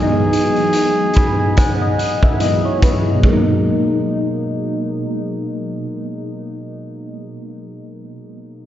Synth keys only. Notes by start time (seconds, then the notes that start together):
Already playing: E3 F#3 G#3 B3
0.03 D#4
1.16 B5
1.40 G#5
1.57 F#5
1.82 D#5
1.98 F#5
2.23 E5
2.39 E3 F#3 G#3 B3 D#5
2.44 E4
2.65 C#5
2.83 B4
3.15 B2
3.20 F#3
3.24 G#3
3.28 A#3
3.33 D#4